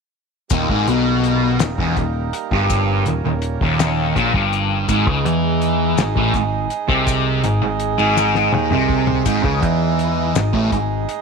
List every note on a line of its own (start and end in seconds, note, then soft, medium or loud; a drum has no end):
0.50 0.68 D#1 medium
0.50 0.68 D#2 loud
0.50 4.85 G3 medium
0.50 4.85 A#3 medium
0.50 2.68 D#4 medium
0.50 4.85 A#4 medium
0.50 kick loud
0.50 closed hi-hat medium
0.50 maracas medium
0.69 0.86 G#1 medium
0.69 0.87 G#2 loud
0.69 kick loud
0.87 1.57 B1 medium
0.87 1.60 B2 medium
0.87 closed hi-hat medium
0.87 maracas soft
1.24 closed hi-hat medium
1.59 1.78 D#1 medium
1.59 1.79 D#2 medium
1.59 snare loud
1.59 closed hi-hat loud
1.59 maracas loud
1.78 1.95 E1 medium
1.78 1.96 E2 loud
1.78 kick medium
1.96 2.31 D#1 medium
1.96 2.27 D#2 medium
1.96 kick medium
1.96 closed hi-hat medium
1.96 maracas soft
2.33 closed hi-hat medium
2.33 maracas soft
2.51 3.02 G1 loud
2.51 3.06 G2 loud
2.51 kick loud
2.70 4.87 C#4 medium
2.70 kick loud
2.70 closed hi-hat medium
2.70 maracas loud
3.06 3.23 D#1 medium
3.06 3.24 D#2 medium
3.06 closed hi-hat medium
3.06 maracas soft
3.24 3.58 D#1 medium
3.24 3.54 D#2 medium
3.42 closed hi-hat medium
3.61 4.12 D#1 loud
3.61 4.15 D#2 loud
3.61 kick loud
3.79 snare loud
3.79 closed hi-hat medium
3.79 maracas loud
4.16 4.33 A#1 medium
4.16 4.33 A#2 medium
4.16 kick medium
4.16 closed hi-hat medium
4.16 maracas soft
4.34 4.85 G1 medium
4.34 4.88 G2 loud
4.34 kick loud
4.53 closed hi-hat medium
4.53 maracas soft
4.88 5.05 G#1 medium
4.88 5.06 G#2 loud
4.88 11.22 G#3 medium
4.88 11.22 D#4 medium
4.88 11.22 G#4 medium
4.88 11.22 D#5 medium
4.88 kick loud
4.88 closed hi-hat loud
4.88 maracas medium
5.07 5.24 C#2 loud
5.07 5.24 C#3 loud
5.07 kick loud
5.25 5.94 E2 loud
5.25 5.97 E3 loud
5.25 closed hi-hat medium
5.62 closed hi-hat medium
5.97 6.15 G#1 medium
5.97 6.16 G#2 medium
5.97 snare loud
5.97 closed hi-hat medium
5.97 maracas loud
6.15 6.33 A1 medium
6.15 6.34 A2 loud
6.15 kick loud
6.34 6.68 G#1 medium
6.34 6.64 G#2 medium
6.34 kick medium
6.34 closed hi-hat medium
6.34 maracas soft
6.70 closed hi-hat medium
6.70 maracas soft
6.88 7.40 C2 loud
6.88 7.42 C3 loud
6.88 kick loud
7.07 kick loud
7.07 closed hi-hat medium
7.07 maracas medium
7.44 7.61 G#1 medium
7.44 7.60 G#2 medium
7.44 closed hi-hat medium
7.44 maracas soft
7.62 7.96 G#1 medium
7.62 7.91 G#2 medium
7.80 closed hi-hat medium
7.98 8.49 G#1 loud
7.98 8.52 G#2 loud
7.98 maracas soft
8.17 snare medium
8.17 maracas loud
8.35 snare medium
8.53 8.70 D#2 medium
8.53 8.71 D#3 loud
8.53 mid tom medium
8.71 9.23 C2 medium
8.71 9.25 C3 medium
8.71 mid tom medium
8.89 kick medium
9.07 floor tom medium
9.26 9.43 G#1 medium
9.26 9.43 G#2 loud
9.26 kick loud
9.26 closed hi-hat loud
9.26 maracas medium
9.44 9.61 C#2 loud
9.44 9.61 C#3 loud
9.44 kick loud
9.61 10.32 E2 loud
9.61 10.34 E3 loud
9.61 kick medium
9.61 closed hi-hat medium
9.61 maracas soft
9.99 closed hi-hat medium
10.35 10.53 G#1 medium
10.35 10.53 G#2 medium
10.35 snare loud
10.35 closed hi-hat medium
10.35 maracas loud
10.53 10.71 A1 medium
10.53 10.71 A2 medium
10.53 kick loud
10.72 11.06 G#1 medium
10.72 11.02 G#2 medium
10.72 kick medium
10.72 closed hi-hat medium
10.72 maracas soft
11.09 closed hi-hat medium
11.09 maracas soft